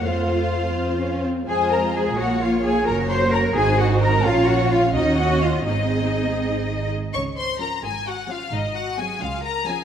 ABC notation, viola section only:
X:1
M:6/8
L:1/8
Q:3/8=86
K:Fphr
V:1 name="Viola section"
[=A,F]3 C D C | [K:Db] [A,F]3 [B,F]3 | [B,G]3 [EG]3 | [DF]3 [DG]3 |
[CA]4- [CA] z | z2 [F,D] z2 [F,D] | z2 [G,C] z2 [F,D] |]